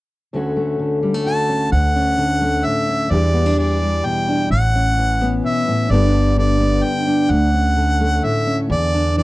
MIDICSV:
0, 0, Header, 1, 4, 480
1, 0, Start_track
1, 0, Key_signature, 2, "major"
1, 0, Tempo, 465477
1, 329, Time_signature, 3, 2, 24, 8
1, 9518, End_track
2, 0, Start_track
2, 0, Title_t, "Harmonica"
2, 0, Program_c, 0, 22
2, 1296, Note_on_c, 0, 81, 75
2, 1741, Note_off_c, 0, 81, 0
2, 1778, Note_on_c, 0, 78, 79
2, 2736, Note_on_c, 0, 76, 66
2, 2751, Note_off_c, 0, 78, 0
2, 3210, Note_on_c, 0, 74, 67
2, 3225, Note_off_c, 0, 76, 0
2, 3690, Note_off_c, 0, 74, 0
2, 3703, Note_on_c, 0, 74, 68
2, 4183, Note_on_c, 0, 79, 81
2, 4199, Note_off_c, 0, 74, 0
2, 4646, Note_off_c, 0, 79, 0
2, 4652, Note_on_c, 0, 78, 79
2, 5568, Note_off_c, 0, 78, 0
2, 5618, Note_on_c, 0, 76, 73
2, 6097, Note_on_c, 0, 74, 72
2, 6112, Note_off_c, 0, 76, 0
2, 6571, Note_off_c, 0, 74, 0
2, 6582, Note_on_c, 0, 74, 68
2, 7051, Note_on_c, 0, 79, 66
2, 7066, Note_off_c, 0, 74, 0
2, 7537, Note_on_c, 0, 78, 68
2, 7552, Note_off_c, 0, 79, 0
2, 8499, Note_on_c, 0, 76, 73
2, 8514, Note_off_c, 0, 78, 0
2, 8845, Note_off_c, 0, 76, 0
2, 8988, Note_on_c, 0, 74, 72
2, 9426, Note_off_c, 0, 74, 0
2, 9464, Note_on_c, 0, 74, 64
2, 9518, Note_off_c, 0, 74, 0
2, 9518, End_track
3, 0, Start_track
3, 0, Title_t, "Steel-string acoustic guitar"
3, 0, Program_c, 1, 25
3, 341, Note_on_c, 1, 38, 49
3, 347, Note_on_c, 1, 50, 40
3, 354, Note_on_c, 1, 57, 39
3, 363, Note_on_c, 1, 61, 40
3, 369, Note_on_c, 1, 66, 48
3, 570, Note_off_c, 1, 57, 0
3, 582, Note_on_c, 1, 57, 40
3, 806, Note_off_c, 1, 50, 0
3, 819, Note_on_c, 1, 50, 45
3, 1054, Note_off_c, 1, 57, 0
3, 1059, Note_on_c, 1, 55, 45
3, 1176, Note_off_c, 1, 55, 0
3, 1176, Note_on_c, 1, 57, 33
3, 1288, Note_off_c, 1, 66, 0
3, 1301, Note_on_c, 1, 66, 40
3, 1526, Note_off_c, 1, 61, 0
3, 1539, Note_on_c, 1, 61, 41
3, 1746, Note_off_c, 1, 61, 0
3, 1747, Note_off_c, 1, 66, 0
3, 1762, Note_off_c, 1, 38, 0
3, 1774, Note_off_c, 1, 57, 0
3, 1774, Note_on_c, 1, 38, 55
3, 2019, Note_on_c, 1, 61, 39
3, 2233, Note_off_c, 1, 50, 0
3, 2246, Note_on_c, 1, 50, 47
3, 2487, Note_on_c, 1, 57, 40
3, 2724, Note_on_c, 1, 45, 38
3, 2964, Note_off_c, 1, 61, 0
3, 2976, Note_on_c, 1, 61, 39
3, 3180, Note_off_c, 1, 57, 0
3, 3185, Note_off_c, 1, 61, 0
3, 3195, Note_off_c, 1, 38, 0
3, 3199, Note_on_c, 1, 40, 56
3, 3202, Note_off_c, 1, 50, 0
3, 3206, Note_on_c, 1, 52, 45
3, 3207, Note_off_c, 1, 45, 0
3, 3213, Note_on_c, 1, 55, 45
3, 3223, Note_on_c, 1, 62, 48
3, 3229, Note_on_c, 1, 67, 52
3, 3436, Note_off_c, 1, 62, 0
3, 3440, Note_on_c, 1, 59, 39
3, 3566, Note_off_c, 1, 59, 0
3, 3566, Note_on_c, 1, 62, 37
3, 3681, Note_off_c, 1, 52, 0
3, 3685, Note_on_c, 1, 52, 47
3, 3924, Note_off_c, 1, 55, 0
3, 3936, Note_on_c, 1, 55, 43
3, 4172, Note_on_c, 1, 47, 42
3, 4407, Note_off_c, 1, 62, 0
3, 4418, Note_on_c, 1, 62, 40
3, 4614, Note_off_c, 1, 40, 0
3, 4617, Note_off_c, 1, 52, 0
3, 4621, Note_off_c, 1, 47, 0
3, 4625, Note_off_c, 1, 62, 0
3, 4629, Note_off_c, 1, 67, 0
3, 4651, Note_on_c, 1, 45, 52
3, 4652, Note_off_c, 1, 55, 0
3, 4902, Note_on_c, 1, 61, 44
3, 5132, Note_on_c, 1, 52, 44
3, 5374, Note_on_c, 1, 59, 44
3, 5603, Note_off_c, 1, 45, 0
3, 5608, Note_on_c, 1, 47, 44
3, 5847, Note_off_c, 1, 47, 0
3, 5854, Note_on_c, 1, 45, 46
3, 6060, Note_off_c, 1, 52, 0
3, 6061, Note_off_c, 1, 59, 0
3, 6065, Note_off_c, 1, 61, 0
3, 6090, Note_off_c, 1, 45, 0
3, 6090, Note_on_c, 1, 43, 60
3, 6097, Note_on_c, 1, 50, 48
3, 6104, Note_on_c, 1, 59, 49
3, 6112, Note_on_c, 1, 62, 51
3, 6121, Note_on_c, 1, 67, 55
3, 6325, Note_off_c, 1, 62, 0
3, 6329, Note_on_c, 1, 62, 42
3, 6560, Note_off_c, 1, 50, 0
3, 6573, Note_on_c, 1, 50, 46
3, 6801, Note_off_c, 1, 59, 0
3, 6813, Note_on_c, 1, 59, 44
3, 7028, Note_off_c, 1, 50, 0
3, 7040, Note_on_c, 1, 50, 45
3, 7289, Note_off_c, 1, 62, 0
3, 7293, Note_on_c, 1, 62, 42
3, 7494, Note_off_c, 1, 50, 0
3, 7499, Note_off_c, 1, 43, 0
3, 7501, Note_off_c, 1, 59, 0
3, 7514, Note_off_c, 1, 67, 0
3, 7526, Note_on_c, 1, 38, 52
3, 7767, Note_off_c, 1, 62, 0
3, 7771, Note_on_c, 1, 61, 41
3, 8008, Note_on_c, 1, 50, 44
3, 8255, Note_on_c, 1, 57, 43
3, 8493, Note_on_c, 1, 45, 42
3, 8720, Note_off_c, 1, 61, 0
3, 8733, Note_on_c, 1, 61, 42
3, 8942, Note_off_c, 1, 61, 0
3, 8943, Note_off_c, 1, 57, 0
3, 8964, Note_off_c, 1, 38, 0
3, 8968, Note_on_c, 1, 40, 59
3, 8971, Note_off_c, 1, 45, 0
3, 9221, Note_on_c, 1, 62, 45
3, 9450, Note_off_c, 1, 50, 0
3, 9459, Note_on_c, 1, 52, 48
3, 9518, Note_off_c, 1, 40, 0
3, 9518, Note_off_c, 1, 52, 0
3, 9518, Note_off_c, 1, 62, 0
3, 9518, End_track
4, 0, Start_track
4, 0, Title_t, "Upright bass"
4, 0, Program_c, 2, 32
4, 1775, Note_on_c, 2, 38, 74
4, 2692, Note_off_c, 2, 38, 0
4, 3206, Note_on_c, 2, 40, 70
4, 4126, Note_off_c, 2, 40, 0
4, 4645, Note_on_c, 2, 33, 71
4, 5564, Note_off_c, 2, 33, 0
4, 6082, Note_on_c, 2, 31, 69
4, 7003, Note_off_c, 2, 31, 0
4, 7523, Note_on_c, 2, 38, 71
4, 8444, Note_off_c, 2, 38, 0
4, 8967, Note_on_c, 2, 40, 80
4, 9518, Note_off_c, 2, 40, 0
4, 9518, End_track
0, 0, End_of_file